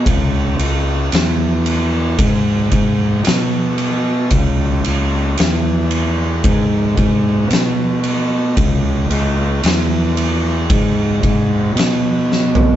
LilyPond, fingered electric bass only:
\new Staff \with { instrumentName = "Fingered electric bass" } { \clef bass \time 4/4 \key cis \minor \tempo 4 = 56 cis,8 cis,8 e,4 gis,8 gis,8 b,4 | cis,8 cis,8 e,4 gis,8 gis,8 b,4 | cis,8 cis,8 e,4 gis,8 gis,8 b,4 | }